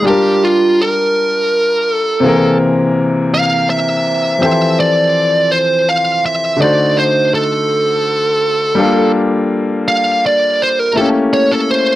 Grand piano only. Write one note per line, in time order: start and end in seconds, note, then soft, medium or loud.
0.02 2.18 G3 medium
0.02 2.19 D4 medium
0.02 2.20 F4 medium
0.07 2.22 A#4 medium
0.07 2.20 A5 medium
2.20 4.36 C3 medium
2.20 4.38 A#3 medium
2.20 4.37 C4 medium
2.24 4.38 E3 medium
2.24 4.39 G#4 medium
2.24 4.40 A#4 medium
4.39 6.56 E3 medium
4.39 6.54 F3 medium
4.39 6.55 C4 medium
4.43 6.56 G4 medium
4.43 6.57 A4 medium
4.43 6.58 C5 medium
6.57 8.72 D3 medium
6.57 8.73 A3 medium
6.57 8.74 D#4 medium
6.62 8.75 F#4 medium
6.62 8.76 C5 medium
8.75 10.91 G3 medium
8.75 10.91 D4 medium
8.75 10.92 F4 medium
8.80 10.94 A#3 medium
8.80 10.93 A4 medium
10.93 11.96 A3 medium
10.93 11.96 E4 medium
10.93 11.96 G4 medium
10.99 11.96 A#3 medium
10.99 11.96 C#4 medium